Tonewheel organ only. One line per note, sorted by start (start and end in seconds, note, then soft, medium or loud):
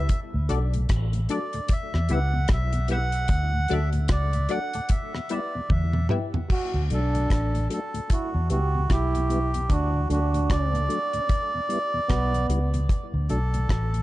0.34 0.40 D2 medium
0.34 0.40 A2 medium
0.49 0.59 F#3 medium
0.49 0.59 A3 medium
0.49 0.59 D4 medium
0.74 0.80 D2 medium
0.74 0.81 A2 medium
1.13 1.20 D2 medium
1.13 1.20 A2 medium
1.29 1.39 F#3 medium
1.29 1.39 A3 medium
1.29 1.39 D4 medium
1.54 1.60 D2 medium
1.54 1.60 A2 medium
1.94 2.01 E2 medium
1.94 2.01 B2 medium
2.09 2.19 G3 medium
2.09 2.19 B3 medium
2.09 2.19 E4 medium
2.33 2.40 E2 medium
2.33 2.40 B2 medium
2.73 2.80 E2 medium
2.73 2.80 B2 medium
2.88 2.99 G3 medium
2.88 2.99 B3 medium
2.88 2.99 E4 medium
3.53 3.60 D2 medium
3.53 3.60 A2 medium
3.69 3.79 F#3 medium
3.69 3.79 A3 medium
3.69 3.80 D4 medium
3.93 4.00 D2 medium
3.93 4.00 A2 medium
4.34 4.40 D2 medium
4.34 4.41 A2 medium
4.49 4.59 F#3 medium
4.49 4.59 A3 medium
4.49 4.59 D4 medium
4.75 4.81 D2 medium
4.75 4.81 A2 medium
5.14 5.21 E2 medium
5.14 5.21 B2 medium
5.30 5.40 G3 medium
5.30 5.40 B3 medium
5.30 5.40 E4 medium
5.55 5.61 E2 medium
5.55 5.61 B2 medium
5.94 6.01 E2 medium
5.94 6.01 B2 medium
6.10 6.19 G3 medium
6.10 6.20 B3 medium
6.10 6.20 E4 medium
6.34 6.40 E2 medium
6.34 6.40 B2 medium
6.75 6.81 D2 medium
6.75 6.81 A2 medium
6.90 7.00 F#3 medium
6.90 7.00 A3 medium
6.90 7.00 D4 medium
7.14 7.20 D2 medium
7.14 7.20 A2 medium
7.54 7.61 D2 medium
7.54 7.60 A2 medium
7.70 7.79 F#3 medium
7.70 7.80 A3 medium
7.70 7.80 D4 medium
7.94 8.00 D2 medium
7.94 8.00 A2 medium
8.34 8.41 E2 medium
8.34 8.41 B2 medium
8.50 8.60 G3 medium
8.50 8.60 B3 medium
8.50 8.60 E4 medium
8.75 8.81 E2 medium
8.75 8.81 B2 medium
9.15 9.21 E2 medium
9.15 9.21 B2 medium
9.30 9.40 G3 medium
9.30 9.40 B3 medium
9.30 9.40 E4 medium
9.55 9.61 E2 medium
9.55 9.61 B2 medium
9.94 10.00 D2 medium
9.94 10.00 A2 medium
10.09 10.19 F#3 medium
10.09 10.19 A3 medium
10.09 10.20 D4 medium
10.34 10.40 D2 medium
10.34 10.40 A2 medium
10.73 10.80 D2 medium
10.73 10.80 A2 medium
10.88 10.99 F#3 medium
10.88 10.99 A3 medium
10.88 10.99 D4 medium
11.13 11.20 D2 medium
11.13 11.20 A2 medium
11.54 11.60 E2 medium
11.54 11.60 B2 medium
11.69 11.79 G3 medium
11.69 11.79 B3 medium
11.69 11.79 E4 medium
11.94 12.00 E2 medium
11.94 12.00 B2 medium
12.34 12.40 E2 medium
12.34 12.40 B2 medium
12.50 12.59 G3 medium
12.50 12.59 B3 medium
12.50 12.60 E4 medium
12.74 12.80 E2 medium
12.74 12.80 B2 medium
13.14 13.20 D2 medium
13.14 13.20 A2 medium
13.29 13.39 F#3 medium
13.29 13.40 A3 medium
13.29 13.40 D4 medium
13.54 13.61 D2 medium
13.54 13.61 A2 medium
13.93 14.00 D2 medium
13.93 14.00 A2 medium